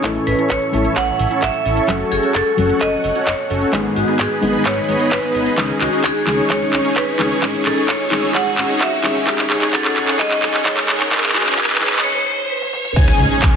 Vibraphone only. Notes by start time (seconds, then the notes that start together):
0.27 B4
0.50 C#5
0.96 F#5
1.42 E5
2.12 G#4
2.35 A4
2.81 D#5
3.27 C#5
3.96 F#4
4.19 G#4
4.66 C#5
5.12 B4
5.81 F#4
6.04 G#4
6.50 C#5
6.96 B4
7.65 A4
7.88 C#5
8.35 F#5
8.81 E5
9.50 G#4
9.73 A4
10.19 D#5
10.66 C#5
11.35 F#4
11.58 G#4
12.04 C#5
12.50 B4